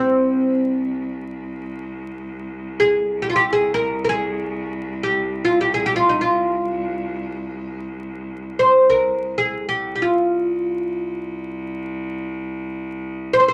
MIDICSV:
0, 0, Header, 1, 3, 480
1, 0, Start_track
1, 0, Tempo, 500000
1, 12995, End_track
2, 0, Start_track
2, 0, Title_t, "Oud"
2, 0, Program_c, 0, 24
2, 0, Note_on_c, 0, 60, 60
2, 1811, Note_off_c, 0, 60, 0
2, 2686, Note_on_c, 0, 68, 76
2, 3089, Note_off_c, 0, 68, 0
2, 3093, Note_on_c, 0, 67, 65
2, 3160, Note_off_c, 0, 67, 0
2, 3164, Note_on_c, 0, 65, 60
2, 3219, Note_off_c, 0, 65, 0
2, 3223, Note_on_c, 0, 67, 75
2, 3382, Note_off_c, 0, 67, 0
2, 3385, Note_on_c, 0, 68, 78
2, 3588, Note_off_c, 0, 68, 0
2, 3591, Note_on_c, 0, 70, 73
2, 3870, Note_off_c, 0, 70, 0
2, 3883, Note_on_c, 0, 70, 59
2, 3924, Note_off_c, 0, 70, 0
2, 3928, Note_on_c, 0, 68, 76
2, 4828, Note_off_c, 0, 68, 0
2, 4832, Note_on_c, 0, 67, 63
2, 5224, Note_off_c, 0, 67, 0
2, 5228, Note_on_c, 0, 65, 66
2, 5379, Note_off_c, 0, 65, 0
2, 5383, Note_on_c, 0, 67, 64
2, 5508, Note_off_c, 0, 67, 0
2, 5511, Note_on_c, 0, 68, 65
2, 5620, Note_off_c, 0, 68, 0
2, 5625, Note_on_c, 0, 67, 71
2, 5717, Note_off_c, 0, 67, 0
2, 5721, Note_on_c, 0, 65, 66
2, 5847, Note_off_c, 0, 65, 0
2, 5850, Note_on_c, 0, 63, 64
2, 5962, Note_on_c, 0, 65, 64
2, 5974, Note_off_c, 0, 63, 0
2, 7526, Note_off_c, 0, 65, 0
2, 8248, Note_on_c, 0, 72, 75
2, 8536, Note_off_c, 0, 72, 0
2, 8540, Note_on_c, 0, 70, 67
2, 9000, Note_off_c, 0, 70, 0
2, 9004, Note_on_c, 0, 68, 69
2, 9295, Note_off_c, 0, 68, 0
2, 9299, Note_on_c, 0, 67, 66
2, 9546, Note_off_c, 0, 67, 0
2, 9557, Note_on_c, 0, 67, 46
2, 9619, Note_on_c, 0, 65, 60
2, 9626, Note_off_c, 0, 67, 0
2, 11938, Note_off_c, 0, 65, 0
2, 12801, Note_on_c, 0, 72, 80
2, 12851, Note_off_c, 0, 72, 0
2, 12862, Note_on_c, 0, 72, 56
2, 12931, Note_off_c, 0, 72, 0
2, 12944, Note_on_c, 0, 72, 59
2, 12995, Note_off_c, 0, 72, 0
2, 12995, End_track
3, 0, Start_track
3, 0, Title_t, "Cello"
3, 0, Program_c, 1, 42
3, 0, Note_on_c, 1, 36, 58
3, 9324, Note_off_c, 1, 36, 0
3, 9329, Note_on_c, 1, 36, 56
3, 12995, Note_off_c, 1, 36, 0
3, 12995, End_track
0, 0, End_of_file